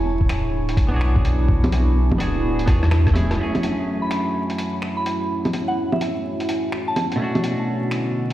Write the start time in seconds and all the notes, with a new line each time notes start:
Already playing: E1 D4 E4 C#5 G#5 B5
0.21 kick
0.29 D1, finger snap, closed hi-hat
0.69 closed hi-hat
0.77 E1, kick, closed hi-hat
0.89 B1 B3 D4
0.94 F#4 G#4
1.01 finger snap
1.16 kick
1.25 closed hi-hat
1.48 kick
1.64 closed hi-hat, low bongo
1.72 closed hi-hat
2.11 kick, low bongo
2.18 D1 B3 D4 F#4, closed hi-hat
2.23 G#4
2.59 closed hi-hat
2.66 E2 B3 D4 F#4 G#4, kick, cross-stick, closed hi-hat
2.83 cross-stick
2.91 finger snap, cross-stick
3.07 kick, cross-stick
3.13 D1 A3 C#4 E4 G#4, closed hi-hat, low bongo
3.31 cross-stick, closed hi-hat
3.35 F#2 A3 C#4 E4 F#4 C#5
3.39 E4 G#4 F#5
3.55 closed hi-hat, low bongo
3.63 closed hi-hat
4.02 B5
4.11 finger snap, closed hi-hat
4.50 closed hi-hat
4.58 closed hi-hat
4.82 finger snap
4.97 B5
5.06 closed hi-hat
5.30 G#5
5.45 closed hi-hat, low bongo
5.53 closed hi-hat
5.68 F#5
5.92 E5, low bongo
6.01 closed hi-hat
6.40 closed hi-hat
6.49 closed hi-hat
6.72 finger snap
6.88 A5
6.96 A5, closed hi-hat, low bongo
7.12 closed hi-hat
7.16 B2 A3 C#4
7.20 D3 A3 D4 F#4 B4 F#5
7.35 closed hi-hat, low bongo
7.44 closed hi-hat
7.91 finger snap, closed hi-hat